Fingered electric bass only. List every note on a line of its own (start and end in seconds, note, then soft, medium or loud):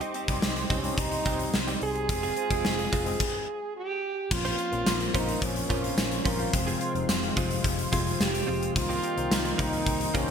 0.28 0.38 C2 loud
0.43 0.63 C2 loud
0.70 0.90 C2 medium
0.98 1.18 C2 loud
1.26 1.46 C2 medium
1.54 1.74 C2 loud
1.82 2.11 C2 medium
2.09 2.29 F1 loud
2.50 2.60 F1 medium
2.65 2.85 F1 loud
2.93 3.12 F1 medium
4.31 4.51 A#1 loud
4.73 4.83 A#1 medium
4.87 5.07 A#1 loud
5.14 5.34 A#1 loud
5.42 5.62 A#1 loud
5.70 5.90 A#1 medium
5.97 6.17 A#1 loud
6.26 6.46 A#1 loud
6.54 6.74 F1 loud
6.95 7.05 F1 medium
7.09 7.29 F1 loud
7.37 7.57 F1 loud
7.64 7.85 F1 loud
7.93 8.13 F1 loud
8.20 8.40 F1 loud
8.48 8.68 F1 medium
8.76 8.96 C2 loud
9.17 9.27 C2 medium
9.31 9.51 C2 loud
9.59 9.79 C2 medium
9.86 10.07 C2 loud
10.15 10.31 C2 loud